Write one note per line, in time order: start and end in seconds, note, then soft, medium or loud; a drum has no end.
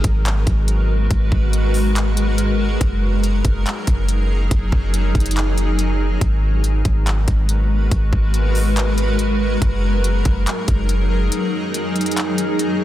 0.00 2.78 G#3 medium
0.00 2.78 F#4 medium
0.00 6.17 A#4 medium
0.00 2.78 B4 medium
0.04 0.45 G#1 loud
0.04 kick medium
0.04 closed hi-hat medium
0.26 clap loud
0.26 closed hi-hat medium
0.47 1.08 G#1 medium
0.47 kick medium
0.47 closed hi-hat medium
0.68 closed hi-hat medium
1.11 1.31 G#1 loud
1.11 kick loud
1.11 closed hi-hat medium
1.32 2.77 G#1 loud
1.32 kick medium
1.53 closed hi-hat medium
1.74 open hi-hat medium
1.96 clap loud
1.96 closed hi-hat medium
2.17 closed hi-hat medium
2.38 closed hi-hat medium
2.81 3.42 F#1 loud
2.81 6.18 F#3 medium
2.81 6.18 D#4 medium
2.81 6.18 G#4 medium
2.81 kick loud
2.81 closed hi-hat medium
3.24 closed hi-hat medium
3.45 3.65 F#1 loud
3.45 kick medium
3.45 closed hi-hat medium
3.66 clap loud
3.66 closed hi-hat medium
3.87 4.49 F#1 loud
3.87 kick medium
3.87 closed hi-hat medium
4.09 closed hi-hat medium
4.51 4.72 F#1 loud
4.51 kick loud
4.51 closed hi-hat medium
4.72 5.13 F#1 loud
4.72 kick medium
4.94 closed hi-hat medium
5.15 6.17 F#1 loud
5.15 kick medium
5.15 closed hi-hat soft
5.20 closed hi-hat medium
5.26 closed hi-hat medium
5.31 closed hi-hat medium
5.37 clap loud
5.37 closed hi-hat medium
5.58 closed hi-hat medium
5.79 closed hi-hat medium
6.21 6.83 G#1 loud
6.21 9.58 G#3 medium
6.21 9.58 F#4 medium
6.21 12.84 A#4 medium
6.21 9.58 B4 medium
6.21 kick loud
6.21 closed hi-hat medium
6.64 closed hi-hat medium
6.85 7.26 G#1 loud
6.85 kick medium
6.85 closed hi-hat medium
7.07 clap loud
7.07 closed hi-hat medium
7.28 7.89 G#1 loud
7.28 kick loud
7.28 closed hi-hat medium
7.49 closed hi-hat medium
7.91 8.12 G#1 loud
7.91 kick loud
7.91 closed hi-hat medium
8.13 9.58 G#1 loud
8.13 kick medium
8.34 closed hi-hat medium
8.55 open hi-hat medium
8.77 clap loud
8.77 closed hi-hat medium
8.98 closed hi-hat medium
9.19 closed hi-hat medium
9.62 10.23 F#1 loud
9.62 12.84 F#3 medium
9.62 12.84 D#4 medium
9.62 12.84 G#4 medium
9.62 kick loud
9.62 closed hi-hat medium
10.04 closed hi-hat medium
10.25 10.46 F#1 loud
10.25 kick medium
10.25 closed hi-hat medium
10.47 clap loud
10.47 closed hi-hat medium
10.68 11.29 F#1 loud
10.68 kick loud
10.68 closed hi-hat medium
10.89 closed hi-hat medium
11.32 closed hi-hat medium
11.74 closed hi-hat medium
11.96 closed hi-hat soft
12.01 closed hi-hat medium
12.06 closed hi-hat medium
12.11 closed hi-hat medium
12.17 clap loud
12.17 closed hi-hat medium
12.38 closed hi-hat medium
12.59 closed hi-hat medium